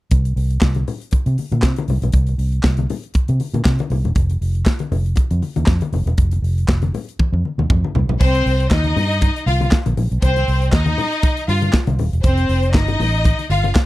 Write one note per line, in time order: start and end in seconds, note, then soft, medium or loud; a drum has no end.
0.11 0.32 C2 medium
0.11 kick medium
0.11 closed hi-hat medium
0.11 muted conga soft
0.25 closed hi-hat soft
0.36 0.57 C2 medium
0.36 open hi-hat medium
0.50 closed hi-hat soft
0.61 0.82 C2 medium
0.61 kick loud
0.61 snare loud
0.61 clap medium
0.61 muted conga soft
0.74 closed hi-hat soft
0.74 high conga medium
0.88 open hi-hat medium
0.88 low conga medium
1.02 closed hi-hat soft
1.11 muted fingered electric bass stroke soft
1.11 kick loud
1.11 closed hi-hat medium
1.11 muted conga soft
1.26 1.36 C3 medium
1.26 closed hi-hat soft
1.26 muted conga soft
1.38 open hi-hat medium
1.38 high conga soft
1.52 1.63 A#2 medium
1.52 closed hi-hat soft
1.52 high conga medium
1.62 1.74 C3 medium
1.62 kick loud
1.62 snare loud
1.62 clap medium
1.62 muted conga soft
1.76 closed hi-hat soft
1.76 muted conga soft
1.76 high conga medium
1.88 2.00 C2 medium
1.88 open hi-hat medium
1.88 low conga medium
2.02 2.11 B1 medium
2.02 closed hi-hat soft
2.02 low conga medium
2.12 2.34 C2 loud
2.12 kick medium
2.12 closed hi-hat medium
2.27 closed hi-hat soft
2.27 muted conga soft
2.38 2.59 C2 medium
2.38 open hi-hat medium
2.52 closed hi-hat soft
2.63 2.85 C2 medium
2.63 kick loud
2.63 snare loud
2.63 clap medium
2.77 closed hi-hat soft
2.77 muted conga soft
2.77 high conga medium
2.90 open hi-hat medium
2.90 low conga medium
3.04 closed hi-hat soft
3.14 muted fingered electric bass stroke soft
3.14 kick loud
3.14 closed hi-hat medium
3.28 3.38 C3 medium
3.28 closed hi-hat soft
3.28 muted conga soft
3.40 open hi-hat medium
3.40 high conga soft
3.54 3.63 A#2 medium
3.54 closed hi-hat soft
3.54 high conga medium
3.65 3.77 C3 medium
3.65 kick loud
3.65 snare loud
3.65 clap medium
3.79 closed hi-hat soft
3.79 muted conga soft
3.79 high conga medium
3.90 4.02 C2 medium
3.90 open hi-hat medium
3.90 low conga medium
4.04 4.14 E1 medium
4.04 closed hi-hat soft
4.04 low conga medium
4.15 4.36 F1 loud
4.15 kick loud
4.15 closed hi-hat medium
4.15 muted conga soft
4.30 closed hi-hat soft
4.30 muted conga soft
4.41 4.62 F1 medium
4.41 open hi-hat medium
4.55 closed hi-hat soft
4.66 kick loud
4.66 snare loud
4.66 clap medium
4.66 muted conga soft
4.79 closed hi-hat soft
4.79 high conga medium
4.91 5.12 F1 medium
4.91 open hi-hat medium
4.91 low conga medium
5.06 closed hi-hat soft
5.16 muted fingered electric bass stroke soft
5.16 kick loud
5.16 closed hi-hat medium
5.16 muted conga soft
5.31 5.40 F2 medium
5.31 closed hi-hat soft
5.31 muted conga soft
5.42 open hi-hat medium
5.42 high conga medium
5.56 5.66 D#2 medium
5.56 closed hi-hat soft
5.56 high conga medium
5.66 5.79 F2 medium
5.66 kick loud
5.66 snare loud
5.66 clap medium
5.81 closed hi-hat soft
5.81 high conga medium
5.93 6.04 F1 medium
5.93 open hi-hat medium
5.93 low conga medium
6.06 6.15 E1 medium
6.06 closed hi-hat soft
6.06 low conga medium
6.18 6.39 F1 loud
6.18 kick loud
6.18 closed hi-hat medium
6.31 closed hi-hat soft
6.31 muted conga soft
6.42 6.63 F1 medium
6.42 open hi-hat medium
6.58 closed hi-hat soft
6.68 6.89 F1 medium
6.68 kick loud
6.68 snare loud
6.68 clap medium
6.82 closed hi-hat soft
6.82 muted conga soft
6.82 high conga medium
6.94 open hi-hat medium
6.94 low conga medium
7.09 closed hi-hat soft
7.19 muted fingered electric bass stroke soft
7.19 kick loud
7.19 high tom medium
7.19 muted conga soft
7.33 7.42 F2 loud
7.33 high tom soft
7.45 high conga soft
7.58 7.67 D#2 medium
7.58 mid tom medium
7.58 high conga medium
7.70 7.81 F2 loud
7.70 kick loud
7.70 mid tom medium
7.84 high conga medium
7.95 8.07 C2 medium
7.95 floor tom medium
7.95 low conga medium
8.09 8.18 B1 medium
8.09 floor tom medium
8.09 low conga medium
8.20 8.41 C2 medium
8.20 8.68 C4 loud
8.20 8.68 C5 loud
8.20 kick loud
8.20 crash medium
8.20 muted conga soft
8.35 closed hi-hat soft
8.46 8.66 C2 medium
8.46 open hi-hat medium
8.60 closed hi-hat soft
8.71 8.92 D#2 medium
8.71 9.43 D#4 loud
8.71 9.43 D#5 loud
8.71 kick loud
8.71 snare loud
8.71 clap medium
8.84 closed hi-hat soft
8.84 high conga medium
8.96 9.28 G2 medium
8.96 open hi-hat medium
8.96 low conga medium
9.12 closed hi-hat soft
9.21 kick loud
9.21 closed hi-hat medium
9.21 muted conga soft
9.36 closed hi-hat soft
9.46 9.67 C2 medium
9.46 9.67 F4 medium
9.46 9.67 F5 medium
9.46 open hi-hat medium
9.46 high conga soft
9.61 closed hi-hat soft
9.61 high conga medium
9.71 kick loud
9.71 snare loud
9.71 clap loud
9.71 muted conga soft
9.86 9.95 A#1 medium
9.86 closed hi-hat soft
9.86 muted conga soft
9.86 high conga medium
9.97 10.09 A#1 medium
9.97 open hi-hat medium
9.97 low conga medium
10.12 10.20 B1 medium
10.12 closed hi-hat soft
10.22 10.43 C2 medium
10.22 10.70 C4 loud
10.22 10.70 C5 loud
10.22 kick loud
10.22 closed hi-hat medium
10.22 muted conga soft
10.36 closed hi-hat soft
10.36 muted conga soft
10.48 10.68 C2 medium
10.48 open hi-hat medium
10.62 closed hi-hat soft
10.72 10.93 D#2 medium
10.72 11.44 D#4 loud
10.72 11.44 D#5 loud
10.72 kick loud
10.72 snare loud
10.72 clap loud
10.72 muted conga soft
10.86 closed hi-hat soft
10.86 muted conga soft
10.86 high conga medium
10.98 open hi-hat medium
10.98 low conga medium
11.13 closed hi-hat soft
11.22 kick loud
11.22 closed hi-hat medium
11.37 closed hi-hat soft
11.48 11.69 G2 medium
11.48 11.69 F4 medium
11.48 11.68 F5 medium
11.48 open hi-hat medium
11.48 high conga medium
11.62 closed hi-hat soft
11.62 high conga medium
11.73 kick loud
11.73 snare loud
11.73 clap medium
11.73 muted conga soft
11.87 11.97 C2 medium
11.87 closed hi-hat soft
11.87 muted conga soft
11.87 high conga medium
11.99 12.11 D#1 medium
11.99 open hi-hat medium
11.99 low conga medium
12.13 12.22 E1 medium
12.13 closed hi-hat soft
12.23 12.45 F1 medium
12.23 12.71 C4 loud
12.23 12.71 C5 loud
12.23 kick loud
12.23 closed hi-hat medium
12.23 muted conga soft
12.37 closed hi-hat soft
12.37 muted conga soft
12.49 12.74 F1 medium
12.49 open hi-hat medium
12.63 closed hi-hat soft
12.73 12.95 G1 medium
12.73 13.46 D#4 loud
12.73 13.46 D#5 loud
12.73 kick loud
12.73 snare loud
12.73 clap medium
12.73 muted conga soft
12.88 closed hi-hat soft
12.88 muted conga soft
12.88 high conga medium
13.00 13.32 A1 medium
13.00 open hi-hat medium
13.00 low conga medium
13.15 closed hi-hat soft
13.24 kick loud
13.24 closed hi-hat medium
13.24 muted conga soft
13.39 closed hi-hat soft
13.39 muted conga soft
13.50 13.70 G1 medium
13.50 13.71 F4 medium
13.50 13.71 F5 medium
13.50 open hi-hat medium
13.50 high conga medium
13.64 closed hi-hat medium
13.64 high conga medium
13.75 kick loud
13.75 snare loud
13.75 clap loud